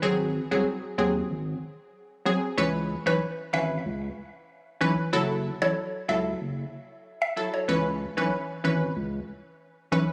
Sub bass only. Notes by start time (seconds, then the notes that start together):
0.03 G#1
0.51 C2
0.98 D#2
1.30 G#1
2.58 C#2
3.06 B1
3.53 G#1
3.85 C#2
4.81 B1
5.13 F#1
5.62 A1
6.09 C#2
6.41 F#1
7.68 C#2
8.18 B1
8.64 G#1
8.96 C#2
9.92 B1